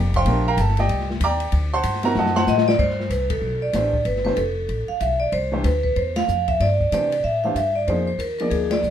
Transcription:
0.00 0.25 F1 loud
0.00 0.13 D5 medium
0.00 0.13 G5 medium
0.00 0.13 A#5 medium
0.00 0.13 D6 loud
0.14 0.45 C5 medium
0.14 0.45 F5 medium
0.14 0.45 G5 medium
0.14 0.45 C6 loud
0.14 kick medium
0.14 ride medium
0.25 0.56 A#1 loud
0.25 0.44 A3 medium
0.25 0.44 D4 medium
0.25 0.44 G4 medium
0.25 0.45 A#4 medium
0.25 ride medium
0.48 0.59 A#4 medium
0.48 0.58 F5 medium
0.48 0.59 G5 medium
0.48 0.58 A#5 loud
0.57 0.88 G1 loud
0.57 0.79 A4 medium
0.57 0.78 A5 medium
0.57 hi-hat pedal medium
0.57 ride medium
0.68 snare soft
0.77 1.08 G4 medium
0.77 1.08 D5 medium
0.77 1.08 D#5 medium
0.77 1.08 G5 medium
0.77 snare medium
0.77 ride medium
0.89 1.19 C2 medium
0.89 ride medium
1.00 snare soft
1.10 snare medium
1.20 1.51 D#2 medium
1.20 1.70 D5 medium
1.20 1.70 D6 loud
1.20 hi-hat pedal medium
1.20 ride medium
1.24 1.52 G5 medium
1.24 1.52 A#5 medium
1.40 ride medium
1.52 1.83 D2 medium
1.52 ride medium
1.74 2.02 C5 medium
1.74 2.03 F#5 medium
1.74 2.03 A5 medium
1.74 2.02 C6 loud
1.83 2.14 G2 medium
1.83 hi-hat pedal medium
1.83 ride medium
1.94 snare soft
2.03 2.45 A3 medium
2.03 2.45 C4 medium
2.03 2.45 D#4 medium
2.03 2.45 F#4 medium
2.03 2.16 A#4 medium
2.03 2.16 A#5 loud
2.03 snare medium
2.03 ride medium
2.15 2.46 F#2 medium
2.15 2.36 A4 medium
2.15 2.35 F#5 medium
2.15 2.35 A5 medium
2.15 snare medium
2.19 2.37 D#5 medium
2.26 snare medium
2.36 2.65 C5 medium
2.36 2.42 F#5 loud
2.36 2.66 F#5 medium
2.36 2.66 A5 medium
2.36 2.65 C6 loud
2.36 snare medium
2.47 2.78 A2 medium
2.47 2.66 D#5 loud
2.47 snare medium
2.47 hi-hat pedal medium
2.58 snare medium
2.68 2.80 D5 medium
2.68 snare loud
2.79 3.09 G2 medium
2.79 3.12 C5 medium
2.79 kick medium
2.79 crash medium
2.90 snare soft
3.00 snare soft
3.10 3.41 C2 medium
3.10 3.19 B4 medium
3.10 hi-hat pedal medium
3.10 ride medium
3.30 3.63 A4 medium
3.30 kick medium
3.30 ride medium
3.42 3.73 B1 medium
3.62 4.03 D5 medium
3.73 4.04 A1 medium
3.73 3.92 E3 medium
3.73 3.92 A3 medium
3.73 3.92 D4 medium
3.73 3.92 G4 soft
3.73 3.93 C5 medium
3.73 snare soft
3.73 hi-hat pedal medium
3.73 ride medium
3.94 kick medium
4.05 4.36 G1 medium
4.05 4.24 B4 medium
4.05 ride medium
4.16 snare soft
4.24 4.36 E3 medium
4.24 4.36 A3 medium
4.24 4.36 D4 medium
4.24 4.37 G4 medium
4.24 4.36 B4 medium
4.24 4.37 C5 medium
4.24 snare soft
4.36 4.68 F1 medium
4.36 4.85 A4 medium
4.36 hi-hat pedal soft
4.36 ride medium
4.69 4.88 A1 medium
4.69 ride soft
4.88 5.01 F5 medium
4.88 muted upright bass stroke soft
5.00 5.32 B1 medium
5.00 5.21 E5 medium
5.00 hi-hat pedal medium
5.00 ride medium
5.20 5.25 D5 medium
5.32 5.64 C2 medium
5.32 5.66 C5 medium
5.32 ride medium
5.52 5.63 E3 medium
5.52 5.64 A3 medium
5.52 5.63 D4 medium
5.52 5.64 G4 medium
5.52 5.64 C5 medium
5.64 5.95 D2 medium
5.64 5.73 B4 medium
5.64 snare soft
5.64 hi-hat pedal soft
5.64 ride medium
5.83 5.97 B4 medium
5.83 kick medium
5.96 6.28 E2 medium
5.96 6.15 C5 medium
5.96 ride medium
6.16 6.49 F5 medium
6.16 snare medium
6.16 ride medium
6.28 6.60 F2 medium
6.28 hi-hat pedal medium
6.48 6.54 E5 medium
6.48 kick medium
6.48 ride soft
6.60 6.91 G2 medium
6.60 6.90 D5 medium
6.60 snare soft
6.60 ride medium
6.80 kick soft
6.92 7.23 C3 medium
6.92 7.11 E3 medium
6.92 7.11 A3 soft
6.92 7.11 D4 soft
6.92 7.11 G4 medium
6.92 7.11 C5 medium
6.92 7.22 D5 medium
6.92 hi-hat pedal medium
6.92 ride medium
7.12 ride medium
7.24 7.55 A2 medium
7.24 7.43 E5 medium
7.44 7.55 E3 medium
7.44 7.55 A3 medium
7.44 7.55 D4 medium
7.44 7.56 G4 medium
7.44 7.56 C5 medium
7.44 7.56 F5 medium
7.55 7.87 G2 medium
7.55 7.75 E5 medium
7.55 hi-hat pedal medium
7.55 ride medium
7.76 7.87 D5 medium
7.88 8.18 F2 medium
7.88 8.06 F3 medium
7.88 8.06 A#3 medium
7.88 8.07 D#4 medium
7.88 8.07 G#4 medium
7.88 8.06 C5 medium
7.88 8.07 C5 medium
7.88 ride medium
8.07 8.20 C5 medium
8.19 8.50 D#2 medium
8.19 8.37 A#4 medium
8.19 hi-hat pedal soft
8.19 ride medium
8.39 8.82 F3 medium
8.39 8.82 A#3 medium
8.39 8.82 D#4 medium
8.39 8.82 G#4 medium
8.39 8.52 A#4 medium
8.39 8.83 D5 medium
8.39 ride soft
8.51 8.82 D2 medium
8.51 8.72 G#4 medium
8.51 ride medium
8.71 8.90 D5 medium
8.71 snare medium
8.71 ride medium
8.83 8.90 C2 medium
8.83 hi-hat pedal soft

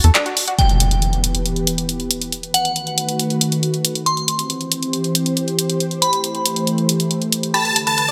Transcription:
0.04 0.11 E2 medium
0.04 0.10 A4 medium
0.04 closed hi-hat medium
0.15 0.24 D4 loud
0.15 clap loud
0.15 closed hi-hat medium
0.26 0.35 F#4 medium
0.26 closed hi-hat soft
0.37 open hi-hat medium
0.48 0.54 F#4 medium
0.48 closed hi-hat medium
0.59 2.31 E3 medium
0.59 2.31 B3 medium
0.59 2.31 G4 medium
0.59 2.31 B4 medium
0.59 1.15 G5 medium
0.59 closed hi-hat soft
0.59 impact medium
0.69 closed hi-hat soft
0.80 closed hi-hat medium
0.91 closed hi-hat soft
1.02 closed hi-hat soft
1.13 closed hi-hat soft
1.24 closed hi-hat medium
1.35 closed hi-hat soft
1.46 closed hi-hat soft
1.56 closed hi-hat soft
1.67 closed hi-hat medium
1.78 closed hi-hat soft
1.89 closed hi-hat soft
2.00 closed hi-hat soft
2.11 closed hi-hat medium
2.22 closed hi-hat soft
2.32 4.05 D#3 medium
2.32 4.05 A3 medium
2.32 4.05 F#4 medium
2.32 4.05 B4 medium
2.32 closed hi-hat soft
2.43 closed hi-hat soft
2.54 3.11 F#5 medium
2.54 closed hi-hat medium
2.65 closed hi-hat soft
2.76 closed hi-hat soft
2.87 closed hi-hat soft
2.98 closed hi-hat medium
3.09 closed hi-hat soft
3.19 closed hi-hat soft
3.30 closed hi-hat soft
3.41 closed hi-hat medium
3.52 closed hi-hat soft
3.63 closed hi-hat soft
3.74 closed hi-hat soft
3.85 closed hi-hat medium
3.95 closed hi-hat soft
4.06 5.79 E3 medium
4.06 5.79 C4 medium
4.06 7.51 G4 medium
4.06 7.51 C5 medium
4.06 4.63 C6 medium
4.06 closed hi-hat soft
4.17 closed hi-hat soft
4.28 closed hi-hat medium
4.39 closed hi-hat soft
4.50 closed hi-hat soft
4.61 closed hi-hat soft
4.72 closed hi-hat medium
4.83 closed hi-hat soft
4.93 closed hi-hat soft
5.04 closed hi-hat soft
5.15 closed hi-hat medium
5.26 closed hi-hat soft
5.37 closed hi-hat soft
5.48 closed hi-hat soft
5.59 closed hi-hat medium
5.70 closed hi-hat soft
5.80 7.53 E3 medium
5.80 7.53 A3 medium
5.80 closed hi-hat soft
5.91 closed hi-hat soft
6.02 6.58 B5 medium
6.02 closed hi-hat medium
6.13 closed hi-hat soft
6.24 closed hi-hat soft
6.35 closed hi-hat soft
6.46 closed hi-hat medium
6.56 closed hi-hat soft
6.67 closed hi-hat soft
6.78 closed hi-hat soft
6.89 closed hi-hat medium
7.00 closed hi-hat soft
7.11 closed hi-hat soft
7.22 closed hi-hat soft
7.32 closed hi-hat medium
7.43 closed hi-hat soft
7.54 8.12 D3 medium
7.54 8.12 A3 medium
7.54 7.63 G4 medium
7.54 8.12 G4 medium
7.54 8.12 B4 medium
7.54 7.79 A5 loud
7.54 8.11 B5 medium
7.54 closed hi-hat soft
7.65 7.74 B4 medium
7.65 closed hi-hat soft
7.76 closed hi-hat medium
7.87 7.93 B4 medium
7.87 8.12 A5 medium
7.87 closed hi-hat soft
7.98 8.03 B4 medium
7.98 closed hi-hat soft
8.09 8.12 D5 medium
8.09 closed hi-hat soft

